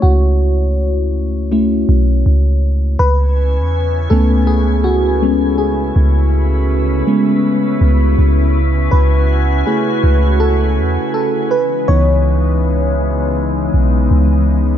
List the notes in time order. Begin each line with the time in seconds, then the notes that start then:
Already playing: A3 C#4 E4 C#5
0.02 C#2 F#4
1.52 A3 C#4 E4
1.89 B1
2.26 C#2
2.99 C#2 C#3 B3 C#4 E4 B4 G#5
3.59 E2
4.10 C#2 A3 B3 C#4 A4
4.47 G#4
4.84 F#4
5.22 G#3 B3 C#4
5.58 G#4
5.96 C#2 B4
7.07 G#3 B3 C#4
7.81 C#2
8.18 C#2
8.55 C#4 F#4 G#5
8.91 C#2 B4
9.67 A3 E4 G#4
10.04 C#2
10.40 A4
10.78 E2
11.14 A4
11.51 C#3 E3 G#3 B3 D#4 B4
11.88 C#2 E3 B3 D#4 C#5
13.74 B1
14.11 C#2